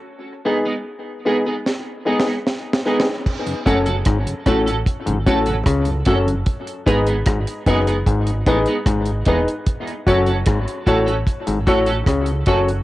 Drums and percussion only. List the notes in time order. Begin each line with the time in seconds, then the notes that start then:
1.66 snare
2.20 snare
2.47 snare
2.73 snare
3.00 snare
3.26 kick, crash
3.47 closed hi-hat
3.66 kick, closed hi-hat
3.86 closed hi-hat
4.05 kick, cross-stick, closed hi-hat
4.27 closed hi-hat
4.46 kick, cross-stick, closed hi-hat
4.67 closed hi-hat
4.86 kick, closed hi-hat
5.07 closed hi-hat
5.27 kick, closed hi-hat
5.46 closed hi-hat
5.66 kick, cross-stick, closed hi-hat
5.85 closed hi-hat
6.05 kick, closed hi-hat
6.28 closed hi-hat
6.46 kick, closed hi-hat
6.67 closed hi-hat
6.87 kick, closed hi-hat
7.07 closed hi-hat
7.26 kick, cross-stick, closed hi-hat
7.47 closed hi-hat
7.66 kick, closed hi-hat
7.87 closed hi-hat
8.06 kick, closed hi-hat
8.27 closed hi-hat
8.46 kick, closed hi-hat
8.66 closed hi-hat
8.86 kick, cross-stick, closed hi-hat
9.06 closed hi-hat
9.25 kick, closed hi-hat
9.48 closed hi-hat
9.66 kick, closed hi-hat
9.87 closed hi-hat
10.07 kick, closed hi-hat
10.26 closed hi-hat
10.46 kick, cross-stick, closed hi-hat
10.68 closed hi-hat
10.87 kick, closed hi-hat
11.08 closed hi-hat
11.27 kick, closed hi-hat
11.47 closed hi-hat
11.67 kick, closed hi-hat
11.86 closed hi-hat
12.06 kick, cross-stick, closed hi-hat
12.26 closed hi-hat
12.46 kick, closed hi-hat
12.69 closed hi-hat